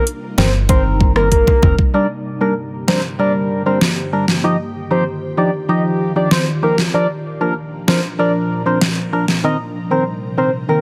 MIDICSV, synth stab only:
0, 0, Header, 1, 2, 480
1, 0, Start_track
1, 0, Key_signature, -2, "minor"
1, 0, Tempo, 625000
1, 1491, Time_signature, 4, 2, 24, 8
1, 8302, End_track
2, 0, Start_track
2, 0, Title_t, "Synth stab"
2, 0, Program_c, 0, 62
2, 289, Note_on_c, 0, 51, 82
2, 291, Note_on_c, 0, 60, 74
2, 294, Note_on_c, 0, 70, 88
2, 387, Note_off_c, 0, 51, 0
2, 388, Note_off_c, 0, 60, 0
2, 389, Note_off_c, 0, 70, 0
2, 529, Note_on_c, 0, 51, 91
2, 531, Note_on_c, 0, 60, 84
2, 533, Note_on_c, 0, 70, 101
2, 861, Note_off_c, 0, 51, 0
2, 862, Note_off_c, 0, 60, 0
2, 863, Note_off_c, 0, 70, 0
2, 888, Note_on_c, 0, 51, 83
2, 890, Note_on_c, 0, 60, 73
2, 893, Note_on_c, 0, 70, 91
2, 986, Note_off_c, 0, 51, 0
2, 987, Note_off_c, 0, 60, 0
2, 988, Note_off_c, 0, 70, 0
2, 1249, Note_on_c, 0, 51, 77
2, 1251, Note_on_c, 0, 60, 68
2, 1254, Note_on_c, 0, 70, 85
2, 1347, Note_off_c, 0, 51, 0
2, 1348, Note_off_c, 0, 60, 0
2, 1349, Note_off_c, 0, 70, 0
2, 1489, Note_on_c, 0, 55, 97
2, 1491, Note_on_c, 0, 62, 90
2, 1493, Note_on_c, 0, 70, 107
2, 1586, Note_off_c, 0, 55, 0
2, 1587, Note_off_c, 0, 62, 0
2, 1588, Note_off_c, 0, 70, 0
2, 1849, Note_on_c, 0, 55, 79
2, 1851, Note_on_c, 0, 62, 69
2, 1854, Note_on_c, 0, 70, 84
2, 1946, Note_off_c, 0, 55, 0
2, 1948, Note_off_c, 0, 62, 0
2, 1949, Note_off_c, 0, 70, 0
2, 2209, Note_on_c, 0, 55, 78
2, 2212, Note_on_c, 0, 62, 70
2, 2215, Note_on_c, 0, 70, 86
2, 2307, Note_off_c, 0, 55, 0
2, 2308, Note_off_c, 0, 62, 0
2, 2309, Note_off_c, 0, 70, 0
2, 2450, Note_on_c, 0, 55, 94
2, 2451, Note_on_c, 0, 62, 83
2, 2454, Note_on_c, 0, 70, 102
2, 2782, Note_off_c, 0, 55, 0
2, 2783, Note_off_c, 0, 62, 0
2, 2784, Note_off_c, 0, 70, 0
2, 2810, Note_on_c, 0, 55, 77
2, 2813, Note_on_c, 0, 62, 70
2, 2814, Note_on_c, 0, 70, 85
2, 2907, Note_off_c, 0, 55, 0
2, 2908, Note_off_c, 0, 62, 0
2, 2909, Note_off_c, 0, 70, 0
2, 3170, Note_on_c, 0, 55, 75
2, 3172, Note_on_c, 0, 62, 67
2, 3175, Note_on_c, 0, 70, 82
2, 3267, Note_off_c, 0, 55, 0
2, 3268, Note_off_c, 0, 62, 0
2, 3269, Note_off_c, 0, 70, 0
2, 3408, Note_on_c, 0, 53, 97
2, 3410, Note_on_c, 0, 63, 85
2, 3413, Note_on_c, 0, 67, 109
2, 3506, Note_off_c, 0, 53, 0
2, 3507, Note_off_c, 0, 63, 0
2, 3508, Note_off_c, 0, 67, 0
2, 3768, Note_on_c, 0, 53, 77
2, 3770, Note_on_c, 0, 63, 73
2, 3773, Note_on_c, 0, 67, 87
2, 3866, Note_off_c, 0, 53, 0
2, 3867, Note_off_c, 0, 63, 0
2, 3868, Note_off_c, 0, 67, 0
2, 4128, Note_on_c, 0, 53, 78
2, 4130, Note_on_c, 0, 63, 72
2, 4132, Note_on_c, 0, 67, 83
2, 4226, Note_off_c, 0, 53, 0
2, 4227, Note_off_c, 0, 63, 0
2, 4228, Note_off_c, 0, 67, 0
2, 4367, Note_on_c, 0, 53, 91
2, 4369, Note_on_c, 0, 63, 86
2, 4372, Note_on_c, 0, 67, 102
2, 4701, Note_off_c, 0, 53, 0
2, 4701, Note_off_c, 0, 63, 0
2, 4703, Note_off_c, 0, 67, 0
2, 4728, Note_on_c, 0, 53, 77
2, 4731, Note_on_c, 0, 63, 69
2, 4733, Note_on_c, 0, 67, 86
2, 4826, Note_off_c, 0, 53, 0
2, 4827, Note_off_c, 0, 63, 0
2, 4828, Note_off_c, 0, 67, 0
2, 5088, Note_on_c, 0, 53, 75
2, 5090, Note_on_c, 0, 63, 69
2, 5092, Note_on_c, 0, 67, 84
2, 5186, Note_off_c, 0, 53, 0
2, 5187, Note_off_c, 0, 63, 0
2, 5188, Note_off_c, 0, 67, 0
2, 5329, Note_on_c, 0, 53, 96
2, 5331, Note_on_c, 0, 62, 89
2, 5334, Note_on_c, 0, 70, 102
2, 5426, Note_off_c, 0, 53, 0
2, 5428, Note_off_c, 0, 62, 0
2, 5429, Note_off_c, 0, 70, 0
2, 5689, Note_on_c, 0, 53, 78
2, 5690, Note_on_c, 0, 62, 69
2, 5693, Note_on_c, 0, 70, 83
2, 5786, Note_off_c, 0, 53, 0
2, 5787, Note_off_c, 0, 62, 0
2, 5788, Note_off_c, 0, 70, 0
2, 6049, Note_on_c, 0, 53, 77
2, 6051, Note_on_c, 0, 62, 72
2, 6053, Note_on_c, 0, 70, 86
2, 6146, Note_off_c, 0, 53, 0
2, 6147, Note_off_c, 0, 62, 0
2, 6149, Note_off_c, 0, 70, 0
2, 6288, Note_on_c, 0, 53, 92
2, 6290, Note_on_c, 0, 62, 85
2, 6293, Note_on_c, 0, 70, 101
2, 6621, Note_off_c, 0, 53, 0
2, 6622, Note_off_c, 0, 62, 0
2, 6623, Note_off_c, 0, 70, 0
2, 6649, Note_on_c, 0, 53, 78
2, 6651, Note_on_c, 0, 62, 68
2, 6654, Note_on_c, 0, 70, 85
2, 6746, Note_off_c, 0, 53, 0
2, 6747, Note_off_c, 0, 62, 0
2, 6749, Note_off_c, 0, 70, 0
2, 7009, Note_on_c, 0, 53, 71
2, 7011, Note_on_c, 0, 62, 68
2, 7014, Note_on_c, 0, 70, 82
2, 7106, Note_off_c, 0, 53, 0
2, 7107, Note_off_c, 0, 62, 0
2, 7109, Note_off_c, 0, 70, 0
2, 7248, Note_on_c, 0, 51, 99
2, 7252, Note_on_c, 0, 60, 88
2, 7254, Note_on_c, 0, 70, 105
2, 7346, Note_off_c, 0, 51, 0
2, 7348, Note_off_c, 0, 60, 0
2, 7349, Note_off_c, 0, 70, 0
2, 7609, Note_on_c, 0, 51, 76
2, 7612, Note_on_c, 0, 60, 70
2, 7614, Note_on_c, 0, 70, 90
2, 7706, Note_off_c, 0, 51, 0
2, 7708, Note_off_c, 0, 60, 0
2, 7709, Note_off_c, 0, 70, 0
2, 7967, Note_on_c, 0, 51, 76
2, 7970, Note_on_c, 0, 60, 70
2, 7973, Note_on_c, 0, 70, 85
2, 8066, Note_off_c, 0, 51, 0
2, 8067, Note_off_c, 0, 60, 0
2, 8068, Note_off_c, 0, 70, 0
2, 8207, Note_on_c, 0, 51, 91
2, 8209, Note_on_c, 0, 60, 86
2, 8212, Note_on_c, 0, 70, 99
2, 8302, Note_off_c, 0, 51, 0
2, 8302, Note_off_c, 0, 60, 0
2, 8302, Note_off_c, 0, 70, 0
2, 8302, End_track
0, 0, End_of_file